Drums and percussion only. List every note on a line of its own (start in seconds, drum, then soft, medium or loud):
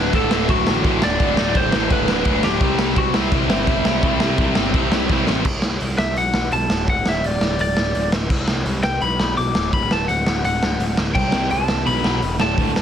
0.13 kick loud
0.13 crash medium
0.31 snare loud
0.49 kick loud
0.49 crash medium
0.67 snare loud
0.84 kick loud
0.84 crash medium
1.02 snare loud
1.20 kick loud
1.20 crash medium
1.37 snare loud
1.55 kick loud
1.55 crash medium
1.72 snare loud
1.90 kick loud
1.90 crash medium
2.08 snare loud
2.25 kick loud
2.25 crash medium
2.43 snare loud
2.61 kick loud
2.61 crash medium
2.79 snare loud
2.96 kick loud
2.96 crash medium
3.14 snare loud
3.32 kick loud
3.32 crash medium
3.50 snare loud
3.67 kick loud
3.67 crash medium
3.85 snare loud
4.03 kick loud
4.03 crash medium
4.20 snare loud
4.38 kick loud
4.38 crash medium
4.55 snare loud
4.74 kick loud
4.74 crash medium
4.92 snare loud
5.09 kick loud
5.09 snare medium
5.27 snare loud
5.45 kick loud
5.45 crash loud
5.62 snare loud
5.80 open hi-hat medium
5.98 snare loud
6.16 open hi-hat medium
6.34 snare loud
6.52 open hi-hat medium
6.70 snare loud
6.88 kick loud
6.88 open hi-hat medium
7.06 snare loud
7.24 open hi-hat medium
7.41 snare loud
7.59 open hi-hat medium
7.77 snare loud
7.95 open hi-hat medium
8.12 snare loud
8.30 kick loud
8.30 crash medium
8.48 snare loud
8.66 open hi-hat medium
8.83 snare loud
9.01 open hi-hat medium
9.20 snare loud
9.38 open hi-hat medium
9.55 snare loud
9.73 kick loud
9.73 open hi-hat medium
9.91 snare loud
10.09 open hi-hat medium
10.26 snare loud
10.44 open hi-hat medium
10.63 snare loud
10.80 open hi-hat medium
10.97 snare loud
11.15 kick loud
11.15 crash medium
11.32 snare loud
11.50 open hi-hat medium
11.68 snare loud
11.87 open hi-hat medium
12.04 snare loud
12.22 open hi-hat medium
12.40 snare loud
12.58 kick loud
12.58 open hi-hat medium
12.76 snare loud